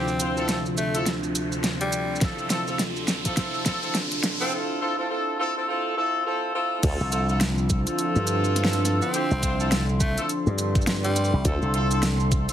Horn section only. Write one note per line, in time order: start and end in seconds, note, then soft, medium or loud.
0.20 0.35 C4 medium
0.20 0.35 E4 medium
0.20 0.35 F4 medium
0.20 0.35 C5 medium
0.37 0.60 C4 medium
0.37 0.60 E4 medium
0.37 0.60 F4 medium
0.37 0.60 A4 medium
0.95 1.07 C4 medium
0.95 1.07 E4 medium
0.95 1.07 F4 medium
0.95 1.07 A4 loud
2.21 2.48 C4 medium
2.21 2.48 E4 medium
2.21 2.48 F4 medium
2.21 2.48 A4 medium
2.50 2.65 C4 medium
2.50 2.65 E4 medium
2.50 2.65 F4 medium
2.50 2.65 A4 medium
2.68 2.80 C4 medium
2.68 2.80 E4 medium
2.68 2.80 F4 medium
2.68 2.80 A4 medium
3.25 3.35 C4 medium
3.25 3.35 E4 medium
3.25 3.35 F4 medium
3.25 3.35 A4 medium
3.37 3.63 C4 medium
3.37 3.63 E4 medium
3.37 3.63 F4 medium
3.37 3.63 A4 medium
3.66 3.80 C4 loud
3.66 3.80 E4 medium
3.66 3.80 F4 medium
3.66 3.80 A4 loud
3.83 3.95 C4 medium
3.83 3.95 E4 medium
3.83 3.95 F4 medium
3.83 3.95 A4 medium
4.41 4.51 C4 medium
4.41 4.51 E4 medium
4.41 4.51 F4 medium
4.41 4.51 A4 medium
4.52 4.78 C4 medium
4.52 4.78 E4 medium
4.52 4.78 F4 medium
4.52 4.78 A4 medium
4.81 4.96 C4 medium
4.81 4.96 E4 medium
4.81 4.96 F4 medium
4.81 4.96 A4 loud
4.98 5.08 C4 medium
4.98 5.08 E4 medium
4.98 5.08 F4 medium
4.98 5.08 A4 medium
5.10 5.36 C4 medium
5.10 5.36 E4 medium
5.10 5.36 F4 medium
5.10 5.36 A4 medium
5.39 5.53 C4 medium
5.39 5.53 E4 medium
5.39 5.53 F4 medium
5.39 5.53 A4 loud
5.56 5.66 C4 medium
5.56 5.66 E4 medium
5.56 5.66 F4 medium
5.56 5.66 A4 medium
5.68 5.94 C4 medium
5.68 5.94 E4 medium
5.68 5.94 F4 medium
5.68 5.94 A4 medium
5.96 6.23 C4 medium
5.96 6.23 E4 medium
5.96 6.23 F4 medium
5.96 6.23 A4 medium
6.25 6.51 C4 medium
6.25 6.51 E4 medium
6.25 6.51 F4 medium
6.25 6.51 A4 medium
6.54 6.80 C4 medium
6.54 6.80 E4 medium
6.54 6.80 F4 medium
6.54 6.80 A4 medium
6.83 7.09 C4 medium
6.83 7.09 E4 medium
6.83 7.09 F4 medium
6.83 7.09 A4 medium
7.12 7.27 C4 medium
7.12 7.27 E4 medium
7.12 7.27 F4 medium
7.12 7.27 A4 loud
7.29 7.41 C4 medium
7.29 7.41 E4 medium
7.29 7.41 F4 medium
7.29 7.41 A4 medium
7.87 9.11 C4 medium
7.87 9.11 E4 medium
7.87 9.11 F4 medium
7.87 9.11 A4 loud
9.14 9.31 C4 medium
9.14 9.31 E4 medium
9.14 9.31 F4 medium
9.14 9.31 G4 medium
9.43 9.57 C4 medium
9.43 9.57 E4 medium
9.43 9.57 F4 medium
9.43 9.57 C5 medium
9.60 9.83 C4 medium
9.60 9.83 E4 medium
9.60 9.83 F4 medium
9.60 9.83 A4 loud
10.18 10.30 C4 medium
10.18 10.30 E4 medium
10.18 10.30 F4 medium
10.18 10.30 A4 medium
11.45 11.71 C4 medium
11.45 11.71 E4 medium
11.45 11.71 F4 medium
11.45 11.71 A4 medium
11.74 11.88 C4 medium
11.74 11.88 E4 medium
11.74 11.88 F4 medium
11.74 11.88 A4 loud
11.91 12.03 C4 medium
11.91 12.03 E4 medium
11.91 12.03 F4 medium
11.91 12.03 A4 medium
12.49 12.53 C4 medium
12.49 12.53 E4 medium
12.49 12.53 F4 medium
12.49 12.53 A4 loud